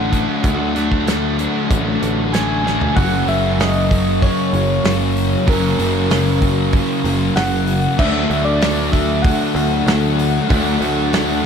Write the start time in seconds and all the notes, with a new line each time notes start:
Already playing: A1 D3 F#3 A3 D4 F#5
0.12 F#3 A3 D4, kick, closed hi-hat
0.43 D2 D3 F#3 A3 D4, kick, closed hi-hat
0.74 F#3 A3 D4, snare, closed hi-hat
0.92 kick
1.07 D3 F#3 A3 D4, snare, closed hi-hat
1.38 F#3 A3 D4, closed hi-hat
1.69 A1 D3 A3 D4, kick, closed hi-hat
2.02 A1 A3 D4, closed hi-hat
2.33 D3 F#3 A3 D4 G#5, snare, closed hi-hat
2.64 F#3 A3 D4, snare
2.81 floor tom
2.95 F#1 F#2 C#3 F#3 A#3 C#4 F#5, kick, open hi-hat
3.27 F#1 C#3 F#3 E5, open hi-hat
3.58 F#2 C#3 F#3 D#5, snare, open hi-hat
3.89 C#3 F#3, kick, open hi-hat
4.22 C#5, kick, open hi-hat
4.53 F#1 C#3 F#3, open hi-hat
4.84 F#1 F#2 C#3 F#3, snare, open hi-hat
5.16 open hi-hat
5.47 F#1 F#2 C#3 F#3 A#3 C#4 A#4, kick, open hi-hat
5.79 F#1 C#3 F#3, open hi-hat
6.10 F#2 C#3 F#3, snare, open hi-hat
6.41 C#3 F#3, kick, open hi-hat
6.73 kick, open hi-hat
7.03 F#1 C#3 F#3, open hi-hat
7.36 F#1 F#2 C#3 F#3 F#5, snare, open hi-hat
7.67 open hi-hat
7.97 D2 D3 F#3 A3 D4 E5, kick, crash
8.29 D2 A3 D4, open hi-hat
8.45 D5
8.60 D3 A3 D4, snare, open hi-hat
8.92 A3 D4 E5, kick, open hi-hat
9.22 F#5, kick, open hi-hat
9.54 D2 A3 D4, open hi-hat
9.86 D2 D3 A3 D4, snare, open hi-hat
10.19 open hi-hat
10.48 D2 D3 F#3 A3 D4, kick, open hi-hat
10.81 D2 A3 D4, open hi-hat
11.12 D3 A3 D4, snare, open hi-hat
11.42 D4